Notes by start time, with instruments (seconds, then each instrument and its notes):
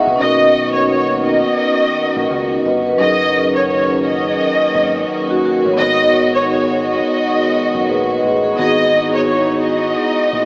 Already playing: string section E3 G#3 D#4 F#4, vibraphone D#5 E5 F#5
0.07 fingered electric bass C2, vibraphone B4 D#5
0.16 vibraphone C#4 D#4
0.20 fingered electric bass B1, string section D#3 A#3 B3, vibraphone F#4, violin section D#5
0.24 vibraphone A#4
0.74 violin section C#5
0.90 violin section C#5
1.25 violin section D#5
2.16 fingered electric bass A#1
2.30 fingered electric bass C#2, vibraphone F#4 A#4
2.65 fingered electric bass G1, vibraphone B4 D#5
2.86 vibraphone B4
2.95 vibraphone F#3 C#4, violin section D#5
3.00 fingered electric bass F#1, string section D#3 A#3 C#4 F#4, vibraphone D#4 G#4
3.04 vibraphone A#4
3.56 violin section C#5
3.68 violin section C#5
4.05 violin section D#5
4.75 fingered electric bass G#1
5.30 vibraphone D#4 F#4
5.45 vibraphone F#4 A#4
5.65 fingered electric bass A1, vibraphone A#4 C#5
5.73 vibraphone B3 D#4
5.79 fingered electric bass G#1, string section G#3 B3, vibraphone F#4 A#4, violin section D#5
6.35 violin section C#5
6.50 violin section C#5
6.85 violin section D#5
7.74 fingered electric bass F#1
7.89 fingered electric bass A#1, vibraphone G#4 B4
8.11 vibraphone B4 D#5
8.24 fingered electric bass A1
8.44 vibraphone G#4
8.53 string section E3 D#4, vibraphone B3 D#4
8.58 fingered electric bass G#1, vibraphone F#4 G#4, violin section D#5
9.15 violin section C#5
9.27 violin section C#5
9.61 violin section D#5
10.33 fingered electric bass A#1